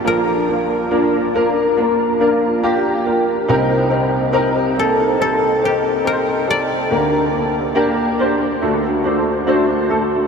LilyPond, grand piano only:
<<
  \new Staff \with { instrumentName = "Grand piano" } { \time 4/4 \key bes \major \tempo 4 = 70 <bes d' f' bes'>8 <bes d' f' bes'>8 <bes d' f' bes'>8 <bes d' f' bes'>8 <bes d' f' bes'>8 <bes d' f' bes'>8 <bes d' f' g'>8 <bes d' f' bes'>8 | <c' ees' g' bes'>8 <c' ees' g' bes'>8 <c' ees' g' bes'>8 <bes c' ees' g'>8 <c' ees' g' c''>8 <c' ees' g' bes'>8 <c' ees' g' c''>8 <c' ees' g' a'>8 | <bes d' g' bes'>8 <bes d' g' a'>8 <bes d' g' bes'>8 <bes d' g' c''>8 <a d' fis' a'>8 <a d' fis' c''>8 <a d' fis' c''>8 <a d' fis' a'>8 | }
  \new Staff \with { instrumentName = "Grand piano" } { \clef bass \time 4/4 \key bes \major <bes,, bes,>1 | <c, c>1 | <d, d>2 <d, d>2 | }
>>